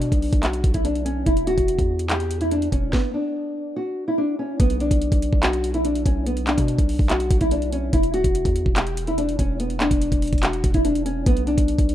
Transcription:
Already playing: 808-style bass B2, nylon-string guitar D4
0.02 closed hi-hat
0.12 808-style bass B1, kick, closed hi-hat
0.22 open hi-hat
0.33 808-style bass B1, kick, closed hi-hat
0.43 nylon-string guitar F#4, clap, closed hi-hat
0.53 closed hi-hat
0.64 808-style bass B1, kick, closed hi-hat
0.74 nylon-string guitar E4, kick, closed hi-hat
0.85 nylon-string guitar D4, closed hi-hat
0.95 closed hi-hat
1.05 nylon-string guitar C#4, closed hi-hat
1.26 808-style bass E1, nylon-string guitar E4, kick, closed hi-hat
1.37 closed hi-hat
1.47 808-style bass D1, nylon-string guitar F#4, closed hi-hat
1.58 808-style bass E1, kick, closed hi-hat
1.68 closed hi-hat
1.79 808-style bass E2, kick, closed hi-hat
1.99 closed hi-hat
2.10 nylon-string guitar G4, clap, closed hi-hat
2.20 closed hi-hat
2.31 closed hi-hat
2.41 nylon-string guitar E4, closed hi-hat
2.51 nylon-string guitar D4, closed hi-hat
2.62 closed hi-hat
2.72 808-style bass E1, nylon-string guitar C#4, kick, closed hi-hat
2.93 nylon-string guitar B3, kick, snare
3.14 nylon-string guitar D4
3.76 nylon-string guitar F#4
4.08 nylon-string guitar E4
4.18 nylon-string guitar D4
4.39 nylon-string guitar C#4
4.60 808-style bass B1, nylon-string guitar B3, kick, closed hi-hat
4.70 closed hi-hat
4.80 nylon-string guitar D4, closed hi-hat
4.91 808-style bass B1, kick, closed hi-hat
5.02 closed hi-hat
5.12 808-style bass B1, kick, closed hi-hat
5.22 closed hi-hat
5.33 808-style bass B1, kick
5.43 nylon-string guitar F#4, clap, closed hi-hat
5.53 closed hi-hat
5.64 closed hi-hat
5.74 808-style bass A#1, nylon-string guitar E4, closed hi-hat
5.85 nylon-string guitar D4, closed hi-hat
5.95 closed hi-hat
6.06 808-style bass B1, nylon-string guitar C#4, kick, closed hi-hat
6.26 nylon-string guitar B3, closed hi-hat
6.37 closed hi-hat
6.47 nylon-string guitar D4, clap, closed hi-hat
6.58 808-style bass B2, kick, closed hi-hat
6.68 closed hi-hat
6.79 808-style bass B1, kick, closed hi-hat
6.89 open hi-hat
6.99 808-style bass B1, kick
7.09 nylon-string guitar F#4, clap, closed hi-hat
7.20 closed hi-hat
7.31 808-style bass B1, kick, closed hi-hat
7.41 nylon-string guitar E4, kick, closed hi-hat
7.51 nylon-string guitar D4, closed hi-hat
7.62 closed hi-hat
7.72 nylon-string guitar C#4, closed hi-hat
7.93 808-style bass E1, nylon-string guitar E4, kick, closed hi-hat
8.03 closed hi-hat
8.14 808-style bass D1, nylon-string guitar F#4, closed hi-hat
8.24 808-style bass E1, kick, closed hi-hat
8.35 closed hi-hat
8.45 808-style bass E2, kick, closed hi-hat
8.56 closed hi-hat
8.66 808-style bass E1, kick
8.76 nylon-string guitar G4, clap, closed hi-hat
8.87 closed hi-hat
8.97 closed hi-hat
9.07 nylon-string guitar E4, closed hi-hat
9.18 nylon-string guitar D4, closed hi-hat
9.29 closed hi-hat
9.39 808-style bass E1, nylon-string guitar C#4, kick, closed hi-hat
9.60 nylon-string guitar B3, closed hi-hat
9.70 closed hi-hat
9.80 nylon-string guitar D4, clap, closed hi-hat
9.91 808-style bass E1, kick, closed hi-hat
10.02 closed hi-hat
10.12 808-style bass E1, kick, closed hi-hat
10.22 closed hi-hat, open hi-hat
10.27 closed hi-hat
10.33 808-style bass E1, kick, closed hi-hat
10.38 closed hi-hat
10.43 nylon-string guitar F#4, clap, closed hi-hat
10.53 closed hi-hat
10.64 808-style bass E1, kick, closed hi-hat
10.74 nylon-string guitar E4, kick, closed hi-hat
10.85 nylon-string guitar D4, closed hi-hat
10.95 closed hi-hat
11.06 nylon-string guitar C#4, closed hi-hat
11.26 808-style bass B1, nylon-string guitar B3, kick, closed hi-hat
11.37 closed hi-hat
11.47 nylon-string guitar D4, closed hi-hat
11.58 808-style bass B1, kick, closed hi-hat
11.68 closed hi-hat
11.79 808-style bass B1, kick, closed hi-hat
11.89 closed hi-hat

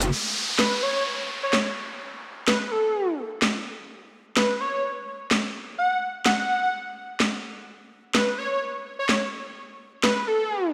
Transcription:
Already playing: wobble bass F#1
0.01 closed hi-hat, maracas
0.12 downlifter
0.59 digital synth lead B4, snare
0.83 digital synth lead C#5
0.96 digital synth lead C#5
1.43 digital synth lead C#5
1.53 snare
2.48 digital synth lead B4, snare
2.71 digital synth lead A4
3.42 snare
4.37 digital synth lead B4, snare
4.60 digital synth lead C#5
4.74 digital synth lead C#5
5.31 snare
5.78 digital synth lead F#5
6.26 digital synth lead F#5, snare
6.39 digital synth lead F#5
6.49 digital synth lead F#5
6.63 digital synth lead F#5
7.20 snare
8.15 digital synth lead B4, snare
8.38 digital synth lead C#5
8.52 digital synth lead C#5
8.99 digital synth lead C#5
9.09 snare
10.04 digital synth lead B4, snare
10.27 digital synth lead A4

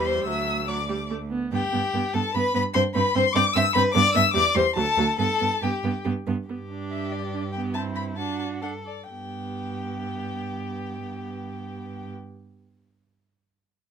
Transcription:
Already playing: cello E2, viola G3
0.05 violin C5 C6
0.24 cello D2, viola F#3, violin E5 E6
0.68 viola F#3, violin D5 D6
0.89 viola G3
1.10 viola A3
1.30 viola B3
1.52 cello G2, viola B3, violin G4 G5
1.73 cello G2, viola B3
1.94 cello G2, viola B3
2.14 cello G2, viola B3, violin A4 A5
2.34 cello G2, viola B3, violin B4 B5
2.54 cello G2, viola B3, violin B4 B5
2.73 cello G2, viola C4, violin C5 C6
2.94 cello G2, viola C4, violin B4 B5
3.14 cello G2, viola C4, violin C5 C6
3.33 cello G2, viola C4, violin D5 D6
3.54 cello G2, viola C4, violin E5 E6
3.74 cello G2, viola C4, violin B4 B5
3.93 cello G2, viola B3, violin D5 D6
4.14 cello G2, viola B3, violin E5 E6
4.33 cello E2, viola G3, violin D5 D6
4.55 cello E2, viola G3, violin C5 C6
4.76 cello D2, viola F#3, violin A4 A5
4.97 cello D2, viola F#3
5.19 cello G2, viola B3, violin A4 A5
5.41 cello G2, viola B3
5.62 cello G2, viola B3, violin G4 G5
5.84 cello G2, viola B3
6.04 cello G2, viola B3
6.27 cello G2, viola B3
6.48 cello G2, viola B3, violin G4
6.71 viola D4
6.91 violin E5
7.12 violin D5
7.34 viola D4
7.52 viola B3, violin G5
7.74 viola C4, violin E4 A5
7.95 violin B5
8.17 viola D4, violin F#4 A5
8.39 violin A5
8.61 viola D4, violin A4 F#5
8.86 violin D5
9.09 cello G2, viola B3, violin G4 G5

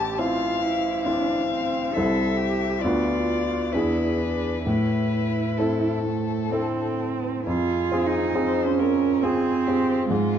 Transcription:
Already playing: grand piano A1, cello G4, violin A5
0.18 grand piano C4 E4 C5, cello F4, violin F5
0.64 cello E4
1.05 grand piano C4 E4 C5, cello D4, violin F5
1.47 cello C4
1.93 grand piano C2 C4 E4, cello A4, violin E5
1.97 grand piano A4
2.37 cello G4
2.81 grand piano D2 B3 F4, cello F4, violin D5
2.85 grand piano B4
3.72 grand piano E2 D4 E4 G#4, cello E4, violin B4
4.18 cello D4
4.64 grand piano A2, cello E4, violin B4
5.58 grand piano C4 E4 A4, violin A4
6.06 cello A3
6.52 cello C4, grand piano C4 E4 A4
7.46 grand piano F2, cello F4, violin G#4
7.91 grand piano C4 F4 G#4
8.06 cello D#4
8.35 grand piano C4 F4 G#4, violin C5
8.65 cello C#4
8.79 grand piano C4 F4 G#4, violin A#4
9.22 grand piano C4 F4 G#4, cello C4, violin G#4
9.66 grand piano C4 F4 G#4, violin G4
10.09 grand piano G#2, cello G#3, violin F4

